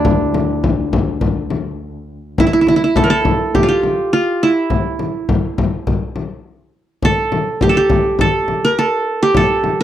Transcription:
Already playing: double bass D2, qanun D4 E4 G4
0.05 frame drum
0.34 frame drum
0.64 frame drum
0.93 frame drum
1.21 frame drum
1.50 frame drum
2.38 qanun E4, frame drum
2.47 qanun E4
2.53 qanun E4
2.61 qanun E4
2.67 qanun E4, frame drum
2.76 qanun E4
2.84 qanun E4
2.96 qanun A4, frame drum
3.04 qanun A#4
3.10 qanun A4
3.25 frame drum
3.55 qanun G4, frame drum
3.63 qanun F4
3.68 qanun G4
3.83 frame drum
4.13 qanun F4
4.43 qanun E4
4.70 frame drum
4.99 frame drum
5.29 frame drum
5.58 frame drum
5.87 frame drum
6.16 frame drum
7.02 qanun A4, frame drum
7.32 frame drum
7.61 qanun G4, frame drum
7.69 qanun A4
7.77 qanun G4
7.90 frame drum
8.19 qanun A4, frame drum
8.48 frame drum
8.65 qanun A#4
8.79 qanun A4
9.23 qanun G4
9.34 qanun A4, frame drum
9.64 frame drum

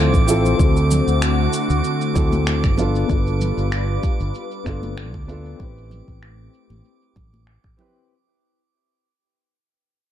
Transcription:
Already playing: fretless electric bass D2, analog synth pad D3 F3 A3 C4, grand piano C4 E4 F4 A4, synth texture D6
0.14 fretless electric bass A1, kick, cabasa
0.26 grand piano C4 E4 F4 A4, cabasa
0.46 cabasa
0.56 fretless electric bass D2, grand piano C4 E4, kick
0.60 analog synth pad D3 A3 F#4, grand piano F#4 A4, cabasa
0.77 cabasa
0.91 low conga, cabasa
1.08 fretless electric bass D2, cabasa
1.22 finger snap, cabasa
1.53 cabasa
1.70 fretless electric bass D2, cabasa
1.84 cabasa
2.01 cabasa
2.14 fretless electric bass D2, grand piano C4 E4 F#4 A4, kick, low conga, cabasa
2.32 high conga, cabasa
2.47 finger snap, cabasa
2.64 fretless electric bass G1, finger snap, kick, cabasa
2.77 analog synth pad G3 D4 F4 B4, grand piano B3 D4 F4 A4, low conga, cabasa
2.96 cabasa
3.07 fretless electric bass G1, grand piano B3 D4, kick, cabasa
3.11 grand piano F4 A4
3.27 cabasa
3.41 low conga, cabasa
3.57 fretless electric bass G1, cabasa
3.72 finger snap, cabasa
4.03 kick, cabasa
4.20 fretless electric bass G1, cabasa
4.35 cabasa
4.51 cabasa
4.64 fretless electric bass G1, grand piano B3 D4 F4 A4, finger snap, kick, cabasa
4.83 high conga, cabasa
4.97 finger snap, cabasa
5.14 fretless electric bass D2, kick, cabasa
5.27 grand piano B3 D4 F4 A4, cabasa
5.46 cabasa
5.56 fretless electric bass A1, grand piano C4 E4, kick
5.60 analog synth pad A3 C4 G4, grand piano G4 B4, cabasa
5.77 cabasa
5.91 low conga, cabasa
6.08 fretless electric bass A1, kick, cabasa
6.23 finger snap, cabasa
6.54 cabasa
6.70 fretless electric bass A1, high conga, cabasa
6.85 cabasa
7.02 cabasa
7.16 fretless electric bass A1, kick, low conga, cabasa
7.33 high conga, cabasa
7.47 finger snap
7.64 fretless electric bass A1, finger snap, kick
7.77 grand piano C4 E4 G4 B4, low conga, cabasa

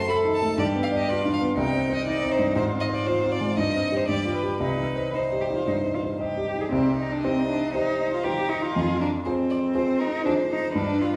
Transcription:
Already playing: grand piano F#2 A3 C5, cello F#4
0.09 grand piano A4, cello A4, violin B5
0.25 grand piano D#4
0.35 violin A5
0.42 grand piano A3
0.58 grand piano G2, cello G4, violin D5
0.75 grand piano B3
0.83 violin F5
0.92 grand piano D5
0.97 violin D#5
1.09 cello F4, grand piano B4, violin D5
1.25 grand piano D4
1.33 violin F5
1.41 grand piano B3
1.57 grand piano C2, cello D#4, violin G5
1.73 grand piano C4
1.90 grand piano C5
1.95 violin D#5
2.07 grand piano D#4, violin D5
2.23 grand piano C4
2.32 violin C5
2.39 grand piano G2
2.56 grand piano G#2, cello F4, violin C5
2.73 grand piano C4
2.80 violin D#5
2.90 grand piano C5
2.95 violin D5
3.07 grand piano F4, violin C5
3.24 grand piano C4
3.32 violin D5
3.41 grand piano G#3
3.58 grand piano G2, cello D#4, violin D#5
3.75 grand piano C4
3.92 grand piano G4 C5
3.97 violin C5
4.08 grand piano G2, cello G4, violin D5
4.25 grand piano F4
4.35 violin B4
4.43 grand piano G4 B4
4.60 grand piano C2, cello D#4, violin B4
4.78 grand piano D#4
4.96 grand piano C5
5.13 cello D#4, violin C5, grand piano D#5
5.32 grand piano G4
5.40 cello G4
5.50 grand piano D#4
5.55 cello F4
5.67 grand piano G2, cello D#4
5.85 grand piano D#4
5.94 cello F4
6.03 grand piano C5
6.20 cello G4, grand piano D#5
6.37 grand piano G4
6.55 grand piano D#4
6.61 cello G#4
6.71 grand piano C2, cello C4, violin G4
6.97 cello D#4
7.12 cello D4
7.22 cello C4, grand piano D#4 G4 C5, violin D#5
7.49 cello D4
7.73 grand piano D#4 G4 C5, cello D#4, violin C5
8.13 cello F4
8.24 grand piano D#4 G4 C5, cello G4, violin A#4
8.49 cello D#4
8.62 cello F4
8.75 grand piano F2, violin G#4
9.00 cello D4, violin A#4
9.25 cello C4, grand piano F4 G#4 C5, violin C5
9.50 violin D5
9.75 grand piano F4 G#4 C5, violin C5
9.99 cello D#4, violin A#4
10.24 cello D4, grand piano F4 G#4 C5, violin C5
10.51 cello D#4
10.74 grand piano G2, cello D4, violin B4
11.01 cello F4

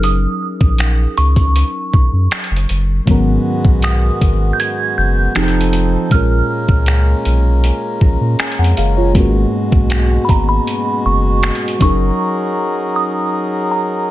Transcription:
Already playing: sub bass F#1, fm electric piano F#3 C#4 D#4 G#4 A#4
0.03 synth bell D#6, closed hi-hat
0.61 sub bass A#1, kick
0.79 finger snap, closed hi-hat
1.17 sub bass C#2, synth bell C#6, closed hi-hat
1.36 kick, closed hi-hat
1.56 closed hi-hat
1.94 sub bass B1, kick
2.13 sub bass F#2
2.31 finger snap, closed hi-hat
2.44 closed hi-hat
2.51 sub bass F#1
2.57 closed hi-hat
2.69 sub bass F#1, closed hi-hat
3.06 sub bass G#1, fm electric piano G#2 D#3 F#3 B3, harmonium G#3 B3 F#4, kick, closed hi-hat
3.10 fm electric piano C#4 A#4
3.65 sub bass B1, kick
3.82 synth bell D#6, finger snap, closed hi-hat
4.21 sub bass G#1, kick, closed hi-hat
4.53 synth bell G6
4.60 synth bell G#6, closed hi-hat
4.98 sub bass F#1, synth bell G6
5.35 sub bass F1, fm electric piano F3 C4 D#4 G4 G#4, harmonium F3 C4 D#4 A4, finger snap, closed hi-hat
5.44 fm electric piano A4
5.48 closed hi-hat
5.61 closed hi-hat
5.73 closed hi-hat
6.10 sub bass A#1, fm electric piano A#2 G#3 C#4 F4, harmonium G#3 A#3 C#4, synth bell F6, kick, closed hi-hat
6.15 fm electric piano A#4
6.68 sub bass C#2, kick
6.86 finger snap, closed hi-hat
7.25 sub bass B1, closed hi-hat
7.64 closed hi-hat
8.01 sub bass A#1, fm electric piano A#5, kick
8.21 sub bass A#2
8.39 fm electric piano G#5, finger snap, closed hi-hat
8.52 closed hi-hat
8.58 sub bass F2, fm electric piano F#5 G#5
8.64 closed hi-hat
8.77 sub bass F#1, fm electric piano G#4 F5, closed hi-hat
8.97 fm electric piano F4 C#5
9.14 sub bass G#1, fm electric piano G#2 G#3 B3 C#4, harmonium B2 F#4, kick, closed hi-hat
9.18 fm electric piano A#3 F#4
9.72 sub bass B1, kick
9.90 finger snap, closed hi-hat
10.25 synth bell B5
10.29 sub bass G#1, synth bell A#5, kick, closed hi-hat
10.49 synth bell B5
10.68 closed hi-hat
11.05 sub bass F#1, synth bell C#6
11.43 finger snap, closed hi-hat
11.55 closed hi-hat
11.68 closed hi-hat
11.79 sub bass F#1, fm electric piano F#3 C#4 D#4 G#4, harmonium F#3 D#4 G#4 A#4, synth bell C#6, kick, closed hi-hat
11.84 fm electric piano A#4
12.96 synth bell D#6
13.72 synth bell A#5

